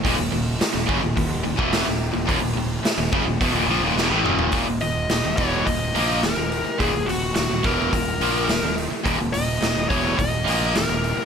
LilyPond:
<<
  \new Staff \with { instrumentName = "Lead electric guitar" } { \time 4/4 \key ees \minor \tempo 4 = 106 r1 | r1 | r8 ees''4 des''8 ees''4 bes'4 | aes'8 ges'8 ges'8 bes'2 r8 |
r8 ees''4 des''8 ees''4 bes'4 | }
  \new Staff \with { instrumentName = "Overdriven electric guitar" } { \clef bass \time 4/4 \key ees \minor <ees, bes,>16 <ees, bes,>16 <ees, bes,>8 r16 <ees, bes,>16 <ges, des>16 <ees, bes,>16 <ees, bes,>8 <ees, bes,>16 <fes, ces fes>8 <ees, bes,>8 <ees, bes,>16 | <ees, bes,>16 <ees, bes,>16 <ees, bes,>8 r16 <ees, bes,>16 <ges, des>16 <ees, bes,>16 <fes, ces>16 <ees, bes,>16 <bes, f>16 <ees, bes,>16 <fes, ces>16 <a, fes>16 <ees, bes, ees>8 | <ees, bes,>16 <ees, bes,>16 <ees, bes,>8 <ees, bes,>16 <ees, bes,>16 <fes, ces fes>8 <ees, bes,>8 <bes, f bes>8 <ees, bes,>16 <ees, bes,>8 r16 | <ees, bes,>16 <ees, bes,>16 <ees, bes,>8 <ees, bes,>16 <ees, bes,>16 <fes, ces fes>8 <ees, bes,>8 <bes, f bes>8 <ees, bes,>16 <ees, bes,>8 r16 |
<ees, bes,>16 <ees, bes,>16 <ees, bes,>8 <ees, bes,>16 <ees, bes,>16 <fes, ces fes>8 <ees, bes,>8 <bes, f bes>8 <ees, bes,>16 <ees, bes,>8 r16 | }
  \new Staff \with { instrumentName = "Overdriven electric guitar" } { \clef bass \time 4/4 \key ees \minor <ees, bes,>16 <ees, bes,>16 <ees, bes,>8 r16 <ees, bes,>16 <ges, des>16 <ees, bes,>16 <ees, bes,>8 <ees, bes,>16 <fes, ces fes>8 <ees, bes,>8 <ees, bes,>16 | <ees, bes,>16 <ees, bes,>16 <ees, bes,>8 r16 <ees, bes,>16 <ges, des>16 <ees, bes,>16 <fes, ces>16 <ees, bes,>16 <bes, f>16 <ees, bes,>16 <fes, ces>16 <a, fes>16 <ees, bes, ees>8 | <ees, bes,>16 <ees, bes,>16 <ees, bes,>8 <ees, bes,>16 <ees, bes,>16 <fes, ces fes>8 <ees, bes,>8 <bes, f bes>8 <ees, bes,>16 <ees, bes,>8 r16 | <ees, bes,>16 <ees, bes,>16 <ees, bes,>8 <ees, bes,>16 <ees, bes,>16 <fes, ces fes>8 <ees, bes,>8 <bes, f bes>8 <ees, bes,>16 <ees, bes,>8 r16 |
<ees, bes,>16 <ees, bes,>16 <ees, bes,>8 <ees, bes,>16 <ees, bes,>16 <fes, ces fes>8 <ees, bes,>8 <bes, f bes>8 <ees, bes,>16 <ees, bes,>8 r16 | }
  \new Staff \with { instrumentName = "Fingered electric bass" } { \clef bass \time 4/4 \key ees \minor ees,,16 ees,,16 ees,,8 r16 ees,,16 ges,,16 ees,,16 ees,,8 ees,,16 fes,,8 ees,,8 ees,,16 | ees,,16 ees,,16 ees,,8 r16 ees,,16 ges,,16 ees,,16 fes,,16 ees,,16 bes,,16 ees,,16 fes,,16 a,,16 ees,,8 | ees,,16 ees,,16 ees,,8 ees,,16 ees,,16 fes,,8 ees,,8 bes,,8 ees,,16 ees,,8 r16 | ees,,16 ees,,16 ees,,8 ees,,16 ees,,16 fes,,8 ees,,8 bes,,8 ees,,16 ees,,8 r16 |
ees,,16 ees,,16 ees,,8 ees,,16 ees,,16 fes,,8 ees,,8 bes,,8 ees,,16 ees,,8 r16 | }
  \new DrumStaff \with { instrumentName = "Drums" } \drummode { \time 4/4 <hho bd>4 <hho sn>8 bd8 <hho bd>8. bd16 <hho sn>4 | <hho bd>4 <hho sn>8 bd8 <hho bd>4 sn8 toml16 tomfh16 | <hho bd>8 hho8 <hho sn>8 <hho bd>8 <hho bd>8 hho8 <hho sn>8 hho8 | <hho bd>8 hho8 <hho sn>8 <hho bd>8 <hho bd>8 hho8 <hho sn>8 hho8 |
<hho bd>8 hho8 <hho sn>8 <hho bd>8 <hho bd>8 hho8 <hho sn>8 hho8 | }
>>